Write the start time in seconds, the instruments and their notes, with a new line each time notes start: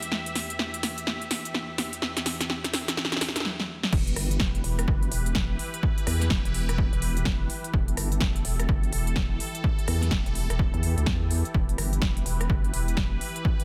Already playing: analog synth pad E2 E3 G4 E5
0.02 closed hi-hat
0.12 snare
0.26 closed hi-hat
0.35 snare, open hi-hat
0.50 closed hi-hat
0.59 snare
0.74 closed hi-hat
0.83 snare, open hi-hat
0.98 closed hi-hat
1.07 snare
1.22 closed hi-hat
1.31 snare, open hi-hat
1.45 closed hi-hat
1.54 snare
1.78 snare, open hi-hat
1.93 closed hi-hat
2.02 snare
2.17 snare, closed hi-hat
2.26 snare, open hi-hat
2.41 snare, closed hi-hat
2.50 snare
2.64 snare, closed hi-hat
2.74 snare, open hi-hat
2.88 snare, closed hi-hat
2.97 snare
3.05 snare
3.12 snare, closed hi-hat
3.17 snare
3.21 snare, open hi-hat
3.28 snare
3.36 snare, closed hi-hat
3.40 snare
3.45 snare
3.60 snare
3.83 snare
3.93 wobble bass E1, analog synth pad E3 E4 G4 B4, kick, crash
4.07 closed hi-hat
4.16 wobble bass G1, cross-stick, open hi-hat
4.31 closed hi-hat
4.40 wobble bass E1, kick, snare
4.55 closed hi-hat
4.64 wobble bass E1, open hi-hat
4.79 cross-stick, closed hi-hat
4.88 wobble bass F#1, kick
5.03 closed hi-hat
5.11 wobble bass E1, open hi-hat
5.26 closed hi-hat
5.35 kick, snare
5.59 open hi-hat
5.74 closed hi-hat
5.83 kick
5.98 closed hi-hat
6.07 wobble bass E2, cross-stick, open hi-hat
6.21 snare, closed hi-hat
6.30 wobble bass E1, kick, snare
6.45 wobble bass E1, closed hi-hat
6.54 open hi-hat
6.69 cross-stick, closed hi-hat
6.78 kick
6.93 wobble bass E1, closed hi-hat
7.02 open hi-hat
7.17 closed hi-hat
7.25 wobble bass E1, kick, snare
7.50 open hi-hat
7.64 closed hi-hat
7.74 wobble bass E1, analog synth pad A4, kick
7.88 closed hi-hat
7.97 wobble bass G1, cross-stick, open hi-hat
8.12 closed hi-hat
8.20 wobble bass E1, kick, snare
8.36 closed hi-hat
8.45 wobble bass E1, open hi-hat
8.60 cross-stick, closed hi-hat
8.69 wobble bass F#1, kick
8.83 closed hi-hat
8.93 wobble bass E1, open hi-hat
9.07 closed hi-hat
9.16 kick, snare
9.40 open hi-hat
9.55 closed hi-hat
9.64 kick
9.79 closed hi-hat
9.88 wobble bass E2, cross-stick, open hi-hat
10.02 snare, closed hi-hat
10.11 wobble bass E1, kick, snare
10.26 wobble bass E1, closed hi-hat
10.35 open hi-hat
10.50 wobble bass E1, cross-stick, closed hi-hat
10.59 kick
10.74 wobble bass E2, closed hi-hat
10.83 open hi-hat
10.98 wobble bass D2, closed hi-hat
11.06 wobble bass E2, kick, snare
11.31 open hi-hat
11.45 closed hi-hat
11.54 wobble bass E1, analog synth pad B4, kick
11.69 closed hi-hat
11.78 wobble bass G1, cross-stick, open hi-hat
11.93 closed hi-hat
12.02 wobble bass E1, kick, snare
12.17 closed hi-hat
12.26 wobble bass E1, open hi-hat
12.41 cross-stick, closed hi-hat
12.50 wobble bass F#1, kick
12.64 closed hi-hat
12.73 wobble bass E1, open hi-hat
12.88 closed hi-hat
12.97 kick, snare
13.21 open hi-hat
13.36 closed hi-hat
13.45 kick
13.60 closed hi-hat